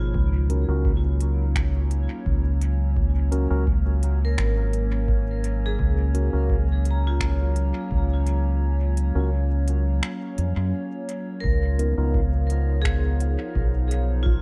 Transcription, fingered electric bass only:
0.00 0.11 G#1 medium
0.15 0.65 C#2 loud
0.69 2.06 C#2 medium
2.26 3.47 C#2 medium
3.51 4.35 C#2 medium
4.38 5.76 G#1 medium
5.79 6.29 C#2 loud
6.33 7.71 C#2 medium
7.91 9.12 C#2 medium
9.15 10.00 C#2 medium
10.38 10.55 F2 medium
10.57 10.71 F#2 loud
11.44 11.94 C#2 loud
11.98 13.35 C#2 medium
13.56 14.42 B1 medium

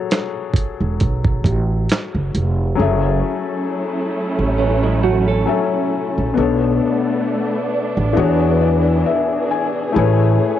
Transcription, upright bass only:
0.80 0.98 E1 medium
1.01 1.41 B1 medium
1.44 1.85 A1 medium
2.14 2.32 F#1 medium
2.35 2.75 F1 medium
2.80 3.20 F#1 loud
4.39 5.44 A1 medium
6.18 6.35 A#1 medium
6.37 6.78 B1 medium
7.97 8.15 A1 medium
8.17 9.02 E2 loud
9.96 10.36 A1 loud

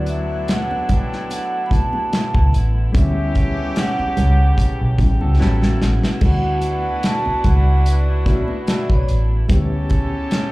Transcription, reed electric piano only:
0.00 0.94 F#3 medium
0.00 0.94 A3 medium
0.00 0.94 B3 medium
0.00 0.98 E4 medium
1.69 2.67 F#3 medium
1.69 2.67 A3 medium
1.69 2.68 B3 medium
1.69 2.68 E4 medium
2.92 4.21 G3 medium
2.92 4.21 B3 medium
2.92 4.22 C#4 medium
2.92 3.01 D4 medium
3.00 4.25 E4 medium
4.97 5.37 G3 medium
4.97 5.37 B3 medium
4.97 5.38 C#4 medium
4.97 5.40 E4 medium
5.38 6.07 F#3 medium
5.38 6.06 G3 medium
5.38 6.06 B3 medium
5.38 6.07 C#4 medium
6.21 7.49 A3 medium
6.21 7.49 B3 medium
6.21 7.50 E4 medium
6.21 7.50 F#4 medium
8.25 9.22 A3 medium
8.25 9.23 B3 medium
8.25 9.23 E4 medium
8.25 9.23 F#4 medium
9.49 10.52 B3 medium
9.49 10.52 C#4 medium
9.49 10.52 E4 medium
9.49 10.52 G4 loud

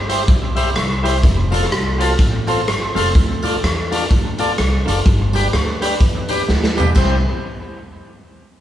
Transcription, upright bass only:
0.00 0.21 G1 medium
0.28 0.69 B1 loud
0.76 1.25 C2 loud
1.24 1.64 F1 loud
1.71 2.11 C2 loud
2.19 2.67 A1 medium
2.67 2.91 G1 medium
2.95 3.12 F1 medium
3.15 3.55 D2 loud
3.63 4.03 E2 medium
4.11 4.51 D2 medium
4.59 4.83 C2 medium
4.88 5.03 F#1 loud
5.06 5.46 G1 loud
5.53 5.94 D2 loud
6.00 6.41 E2 medium
6.49 6.89 D2 medium
6.96 7.22 C2 loud

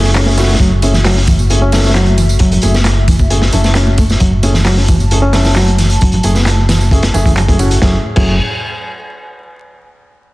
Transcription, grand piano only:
0.26 0.36 A3 medium
0.26 0.36 C#4 medium
0.26 0.36 E4 medium
0.26 0.36 G#4 medium
0.37 0.53 A3 medium
0.37 0.53 C#4 medium
0.37 0.53 E4 medium
0.37 0.53 F#4 loud
0.82 0.92 A3 medium
0.82 0.92 C#4 medium
0.82 0.92 E4 medium
0.82 0.92 G#4 medium
1.50 1.60 A3 medium
1.50 1.60 C#4 medium
1.50 1.60 E4 medium
1.50 1.60 G#4 medium
1.73 1.88 A3 medium
1.73 1.88 C#4 medium
1.73 1.88 E4 medium
1.73 1.88 A4 loud
2.63 2.73 A3 medium
2.63 2.73 C#4 medium
2.63 2.73 E4 medium
2.63 2.73 G#4 medium
3.30 3.40 A3 medium
3.30 3.40 C#4 medium
3.30 3.40 E4 medium
3.30 3.40 G#4 medium
3.53 3.69 A3 medium
3.53 3.69 C#4 medium
3.53 3.69 E4 medium
3.53 3.69 A4 loud
4.43 4.53 A3 medium
4.43 4.53 C#4 medium
4.43 4.53 E4 medium
4.43 4.53 G#4 medium
5.11 5.21 A3 medium
5.11 5.21 C#4 medium
5.11 5.21 E4 medium
5.11 5.21 G#4 medium
5.34 5.49 A3 medium
5.34 5.49 C#4 medium
5.34 5.49 E4 medium
5.34 5.49 A4 loud
6.24 6.34 A3 medium
6.24 6.34 C#4 medium
6.24 6.34 E4 medium
6.24 6.34 G#4 loud
6.92 7.02 A3 medium
6.92 7.01 C#4 medium
6.92 7.02 E4 medium
6.92 7.02 G#4 medium
7.14 7.30 A3 loud
7.14 7.30 C#4 medium
7.14 7.30 E4 loud
7.14 7.30 G#4 loud
7.48 7.58 A3 medium
7.48 7.58 C#4 medium
7.48 7.58 E4 medium
7.48 7.58 G#4 loud
7.59 7.75 A3 medium
7.59 7.75 C#4 medium
7.59 7.75 E4 medium
7.59 7.75 F#4 loud
7.82 7.95 A3 medium
7.82 7.95 C#4 medium
7.82 7.95 E4 medium
7.82 7.95 G#4 medium
8.16 8.33 A3 medium
8.16 8.33 C#4 medium
8.16 8.33 E4 medium
8.16 8.33 G#4 medium

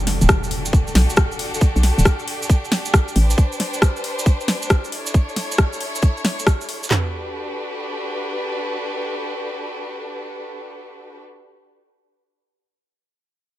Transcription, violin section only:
0.00 6.87 D4 medium
0.00 3.12 F#4 medium
0.00 4.88 G4 medium
0.00 3.13 A4 medium
3.16 4.90 B4 medium
3.16 4.90 C5 medium
4.92 6.89 E4 medium
4.92 6.89 A4 medium
4.92 6.89 C#5 medium
6.91 11.20 D4 medium
6.91 11.20 F#4 medium
6.91 11.20 G4 medium
6.91 11.20 A4 medium
6.91 11.20 B4 medium

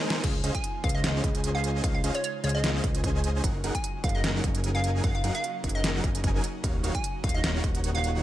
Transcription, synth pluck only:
0.55 0.71 G#5 loud
0.84 0.92 F5 medium
0.95 1.00 D#5 loud
1.04 1.11 D#5 medium
1.55 1.71 F5 medium
1.83 1.91 F5 medium
1.94 2.00 F5 medium
2.15 2.21 C#5 medium
2.24 2.31 C#5 medium
2.44 2.53 C#5 loud
2.55 2.95 D#5 loud
3.75 3.91 G#5 medium
4.04 4.12 F5 loud
4.15 4.21 D#5 medium
4.24 4.31 D#5 medium
4.75 4.91 F5 loud
5.04 5.12 F5 medium
5.15 5.31 F5 medium
5.35 5.51 F5 loud
5.75 6.15 D#5 medium
6.95 7.11 G#5 medium
7.24 7.32 F5 medium
7.34 7.40 D#5 medium
7.44 7.51 D#5 medium
7.95 8.11 F5 medium

